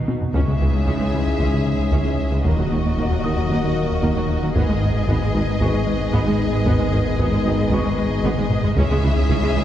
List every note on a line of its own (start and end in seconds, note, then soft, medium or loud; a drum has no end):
0.00 0.11 B2 soft
0.00 0.35 B3 medium
0.00 0.11 D#4 medium
0.00 0.35 D#4 medium
0.00 0.11 F#4 medium
0.00 0.35 F#4 medium
0.00 0.35 D#5 medium
0.00 0.35 C#6 soft
0.08 0.17 B2 medium
0.08 taiko high medium
0.21 0.30 B2 medium
0.21 taiko low medium
0.34 2.47 C#2 medium
0.34 0.40 C#2 soft
0.34 0.40 C#2 medium
0.34 0.43 C#2 medium
0.34 0.40 C#2 medium
0.34 2.41 G#2 soft
0.34 2.41 E3 soft
0.34 2.41 G#3 medium
0.34 2.41 C#4 medium
0.34 0.40 C#4 medium
0.34 2.41 E4 medium
0.34 2.41 G#4 medium
0.34 2.41 G#4 soft
0.34 2.41 C#5 medium
0.34 2.41 E5 soft
0.34 1.89 C#6 soft
0.34 taiko medium
0.47 0.53 C#2 soft
0.47 0.56 C#3 soft
0.47 0.53 G#3 soft
0.61 0.69 C#2 soft
0.61 0.66 C#2 soft
0.61 0.67 C#2 soft
0.61 0.66 E3 soft
0.74 0.82 C#2 medium
0.74 0.79 C#2 soft
0.74 0.79 G#3 soft
0.87 0.92 C#2 soft
0.87 0.95 C#2 medium
0.87 0.93 C#2 medium
0.87 0.93 C#4 soft
0.87 taiko medium
1.00 1.05 C#2 soft
1.00 1.08 C#2 medium
1.00 1.06 G#3 soft
1.13 1.18 C#2 soft
1.13 1.19 C#2 soft
1.13 1.21 C#3 medium
1.13 1.19 E3 soft
1.26 1.32 C#2 soft
1.26 1.35 C#2 medium
1.26 1.32 G#3 soft
1.40 1.48 C#2 medium
1.40 1.45 C#2 medium
1.40 1.46 C#2 medium
1.40 1.46 C#4 medium
1.40 taiko medium
1.53 1.61 C#3 medium
1.66 1.74 C#3 medium
1.79 1.87 C#2 soft
1.92 1.97 C#2 medium
1.92 2.00 C#2 medium
1.92 1.98 C#2 medium
1.92 1.98 C#4 medium
1.92 taiko medium
2.06 2.14 C#2 soft
2.06 2.11 C#2 soft
2.06 2.11 G#3 soft
2.19 2.27 C#2 medium
2.32 2.37 C#2 soft
2.32 2.40 C#3 medium
2.32 2.37 G#3 soft
2.45 4.58 D#1 medium
2.45 2.53 D#2 medium
2.45 2.50 D#2 medium
2.45 2.51 D#2 medium
2.45 4.52 A#2 soft
2.45 4.52 D#3 soft
2.45 4.52 F#3 medium
2.45 4.56 A#3 medium
2.45 4.52 A#3 medium
2.45 2.50 A#3 medium
2.45 8.77 D#4 medium
2.45 4.56 F#4 medium
2.45 4.52 F#4 medium
2.45 4.55 A#4 medium
2.45 4.55 D#5 medium
2.45 taiko medium
2.58 2.64 D#2 soft
2.58 2.67 D#3 medium
2.58 2.64 F#3 soft
2.71 2.76 D#2 soft
2.71 2.77 D#2 soft
2.71 2.79 D#2 medium
2.71 2.77 D#2 soft
2.71 2.77 D#3 soft
2.84 2.90 D#2 soft
2.84 2.93 D#2 medium
2.84 2.91 F#3 soft
2.97 3.03 D#2 medium
2.97 3.06 D#2 medium
2.97 3.03 A#3 medium
2.97 taiko medium
3.11 3.16 D#2 soft
3.11 3.19 D#2 medium
3.11 3.17 F#3 soft
3.24 3.29 D#2 soft
3.24 3.30 D#2 soft
3.24 3.32 D#3 medium
3.24 3.30 D#3 soft
3.24 4.78 D#6 soft
3.37 3.43 D#2 soft
3.37 3.45 D#2 medium
3.37 3.43 F#3 soft
3.50 3.56 D#2 medium
3.50 3.58 D#2 medium
3.50 3.56 D#2 medium
3.50 3.56 A#3 medium
3.50 taiko medium
3.64 3.72 D#3 medium
3.77 3.85 D#3 medium
3.91 3.98 D#2 medium
4.03 4.08 D#2 medium
4.03 4.09 D#2 medium
4.03 4.11 D#2 medium
4.03 4.08 A#3 medium
4.03 taiko medium
4.16 4.21 D#2 soft
4.16 4.25 D#2 medium
4.16 4.22 F#3 soft
4.30 4.38 D#2 medium
4.42 4.48 D#2 soft
4.42 4.51 D#3 medium
4.42 4.48 F#3 soft
4.55 4.61 G#1 medium
4.55 8.78 G#1 medium
4.55 8.61 G#2 medium
4.55 4.64 G#2 medium
4.55 4.61 G#2 medium
4.55 8.61 D#3 medium
4.55 8.60 G#3 medium
4.55 9.64 G#3 medium
4.55 4.61 B3 medium
4.55 8.60 B3 medium
4.55 9.64 G#4 medium
4.55 8.73 G#4 medium
4.55 8.77 B4 medium
4.55 8.73 D#5 medium
4.55 taiko medium
4.69 4.74 G#2 soft
4.69 4.74 G#3 soft
4.69 4.77 G#3 soft
4.82 4.87 G#1 soft
4.82 4.88 G#1 soft
4.82 4.90 G#2 medium
4.82 4.88 G#2 soft
4.82 4.87 D#3 soft
4.95 5.03 G#2 medium
4.95 5.01 G#2 soft
4.95 5.00 G#3 soft
5.08 5.13 G#1 medium
5.08 5.16 G#2 medium
5.08 5.14 G#2 medium
5.08 5.13 B3 medium
5.08 taiko medium
5.21 5.29 G#2 medium
5.21 5.27 G#2 soft
5.21 5.27 G#3 soft
5.34 5.40 G#1 medium
5.34 5.40 G#1 soft
5.34 5.40 G#2 soft
5.34 5.40 D#3 soft
5.34 5.42 G#3 medium
5.47 5.56 G#2 medium
5.47 5.53 G#2 soft
5.47 5.53 G#3 soft
5.61 5.66 G#1 medium
5.61 5.69 G#2 medium
5.61 5.67 G#2 medium
5.61 5.66 B3 medium
5.61 7.15 C#6 soft
5.61 taiko medium
5.74 5.82 G#3 medium
5.87 5.95 G#3 medium
6.00 6.08 G#2 medium
6.13 6.19 G#1 medium
6.13 6.21 G#2 medium
6.13 6.19 G#2 medium
6.13 6.19 B3 medium
6.13 taiko medium
6.26 6.34 G#2 medium
6.26 6.33 G#2 medium
6.26 6.32 G#3 medium
6.39 6.47 G#2 medium
6.53 6.59 G#2 soft
6.53 6.61 G#3 medium
6.53 6.59 G#3 medium
6.66 6.72 G#1 medium
6.66 6.74 G#2 medium
6.66 6.72 G#2 medium
6.66 6.72 B3 medium
6.66 taiko medium
6.80 6.85 G#2 medium
6.80 6.87 G#3 medium
6.80 6.85 G#3 soft
6.93 6.98 G#1 soft
6.93 6.98 G#1 medium
6.93 7.01 G#2 medium
6.93 6.98 G#2 medium
6.93 6.99 D#3 soft
7.05 7.14 G#2 medium
7.05 7.12 G#2 soft
7.05 7.12 G#3 medium
7.19 7.24 G#1 medium
7.19 7.27 G#2 medium
7.19 7.25 G#2 medium
7.19 7.25 B3 medium
7.19 8.73 D#6 soft
7.19 taiko medium
7.32 7.40 G#2 medium
7.32 7.38 G#2 soft
7.32 7.38 G#3 medium
7.45 7.50 G#1 medium
7.45 7.51 G#1 soft
7.45 7.51 G#2 medium
7.45 7.51 D#3 soft
7.45 7.54 G#3 medium
7.59 7.67 G#2 medium
7.59 7.64 G#2 medium
7.59 7.65 G#3 soft
7.71 7.76 G#1 medium
7.71 7.80 G#2 medium
7.71 7.78 G#2 medium
7.71 7.77 B3 medium
7.71 9.26 C#6 medium
7.71 taiko medium
7.85 7.93 G#3 medium
7.98 8.06 G#3 medium
8.11 8.19 G#2 medium
8.24 8.29 G#1 medium
8.24 8.30 G#1 medium
8.24 8.32 G#2 medium
8.24 8.30 G#2 medium
8.24 8.30 B3 medium
8.24 taiko low-mid medium
8.37 8.46 G#2 medium
8.37 8.43 G#2 medium
8.37 8.43 G#3 medium
8.37 taiko low-mid medium
8.51 8.58 G#2 medium
8.51 taiko low-mid medium
8.64 8.69 G#2 medium
8.64 8.72 G#3 medium
8.64 8.70 G#3 medium
8.64 taiko low medium
8.76 9.64 C#2 medium
8.76 8.82 C#2 medium
8.76 8.85 C#2 medium
8.76 9.64 G#2 medium
8.76 8.82 C#3 medium
8.76 9.64 E3 medium
8.76 9.64 G#3 medium
8.76 8.82 C#4 medium
8.76 9.64 C#4 medium
8.76 9.64 E4 medium
8.76 9.64 G#4 medium
8.76 9.64 C#5 medium
8.76 9.64 E5 medium
8.76 taiko medium
8.90 8.98 C#3 medium
8.90 8.96 C#3 medium
8.90 8.96 G#3 medium
9.03 9.11 C#2 medium
9.03 9.09 C#2 soft
9.03 9.09 C#2 medium
9.03 9.09 C#3 medium
9.03 9.09 E3 medium
9.16 9.24 C#2 medium
9.16 9.22 C#3 soft
9.16 9.23 G#3 medium
9.29 9.37 C#2 medium
9.29 9.35 C#2 medium
9.29 9.35 C#3 medium
9.29 9.35 C#4 medium
9.29 taiko medium
9.43 9.51 C#2 medium
9.43 9.48 C#3 medium
9.43 9.48 G#3 medium
9.55 9.61 C#2 medium
9.55 9.63 C#3 medium
9.55 9.62 C#3 medium
9.55 9.61 E3 medium